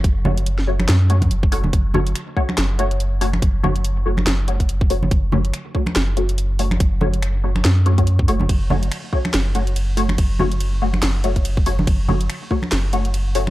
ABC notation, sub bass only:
X:1
M:4/4
L:1/8
Q:"Swing 16ths" 1/4=142
K:F#m
V:1 name="Sub bass" clef=bass
F,,,4 F,,2 F,,,2 | F,,,2 z2 F,,,4 | F,,,4 F,,,4 | F,,,2 z2 F,,,4 |
F,,,4 F,,3 F,,, | F,,,2 z2 F,,,4 | F,,,4 F,,,4 | F,,,2 z2 F,,,4 |]